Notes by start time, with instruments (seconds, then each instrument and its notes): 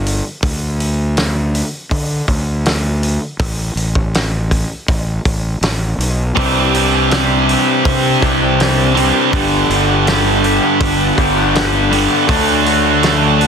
Already playing: fingered electric bass G1
0.06 open hi-hat
0.43 fingered electric bass D2, kick, open hi-hat
0.80 open hi-hat
1.17 snare, open hi-hat
1.55 open hi-hat
1.91 fingered electric bass D3, kick, open hi-hat
2.28 fingered electric bass D2, kick, open hi-hat
2.66 snare, open hi-hat
3.03 open hi-hat
3.39 fingered electric bass A1, kick, open hi-hat
3.75 fingered electric bass A1, open hi-hat
3.95 kick
4.14 snare, open hi-hat
4.51 kick, open hi-hat
4.88 fingered electric bass A1, kick, open hi-hat
5.25 fingered electric bass A1, kick, open hi-hat
5.61 fingered electric bass A1, snare, open hi-hat
5.98 fingered electric bass B1, open hi-hat
6.36 fingered electric bass C2, clean electric guitar C3 E3 G3 D4 G4, distorted electric guitar C4, kick, open hi-hat
6.74 clean electric guitar E3 G3 D4 G4, open hi-hat
6.92 clean electric guitar G3 D4 G4
7.10 clean electric guitar C3 E3 G3 D4 G4, snare, open hi-hat
7.47 clean electric guitar E3 G3 D4 G4, open hi-hat
7.67 clean electric guitar G3 D4 G4
7.85 fingered electric bass C3, kick, open hi-hat
8.21 fingered electric bass C2, clean electric guitar E3 G3 D4 G4, kick, open hi-hat
8.40 clean electric guitar G3 D4 G4
8.59 clean electric guitar C3 E3 G3 D4 G4, snare, open hi-hat
8.94 distorted electric guitar C3 C4, clean electric guitar E3 G3 D4 G4, open hi-hat
9.13 clean electric guitar G3 D4 G4
9.31 fingered electric bass G1, clean electric guitar G2 D3 G3 B3 D4 G4, kick, open hi-hat
9.69 fingered electric bass G1, clean electric guitar G3 B3 D4 G4, open hi-hat
9.87 clean electric guitar G3 B3 D4 G4
10.05 clean electric guitar G2 D3 G3 B3 D4 G4, snare, open hi-hat
10.42 clean electric guitar G3 B3 D4 G4, open hi-hat
10.61 clean electric guitar G3 B3 D4 G4
10.81 fingered electric bass G1, kick, open hi-hat
11.16 fingered electric bass G1, clean electric guitar G3 B3 D4 G4, kick, open hi-hat
11.35 clean electric guitar G3 B3 D4 G4
11.53 clean electric guitar G2 D3 G3 B3 D4 G4, snare, open hi-hat
11.90 distorted electric guitar D3, clean electric guitar G3 B3 D4 G4, open hi-hat
11.94 distorted electric guitar G2
12.08 clean electric guitar G3 B3 D4 G4
12.27 fingered electric bass D2, clean electric guitar D3 F#3 A3 D4 F#4, kick, open hi-hat
12.64 clean electric guitar F#3 A3 D4 F#4, open hi-hat
12.83 clean electric guitar A3 D4 F#4
13.02 clean electric guitar D3 F#3 A3 D4 F#4, snare, open hi-hat
13.39 clean electric guitar F#3 A3 D4 F#4, open hi-hat